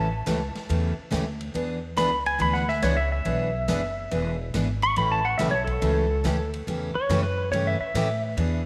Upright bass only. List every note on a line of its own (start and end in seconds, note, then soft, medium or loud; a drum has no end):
0.00 0.25 A1 medium
0.27 0.53 C#2 medium
0.56 muted upright bass stroke soft
0.70 0.96 E2 loud
0.98 muted upright bass stroke soft
1.12 1.54 D2 loud
1.55 1.96 E2 medium
1.98 2.39 C#2 medium
2.40 2.82 D2 medium
2.83 3.24 C#2 medium
3.26 3.67 B1 loud
3.68 4.10 F#1 medium
4.12 4.53 E1 medium
4.54 4.96 G#1 medium
4.97 5.38 A1 medium
5.40 5.81 B1 medium
5.82 6.23 C#2 loud
6.25 6.66 D2 medium
6.67 6.93 E2 loud
6.95 muted upright bass stroke soft
7.09 7.51 F#2 medium
7.52 7.78 G2 loud
7.80 muted upright bass stroke soft
7.94 8.36 A2 medium
8.37 8.66 E2 medium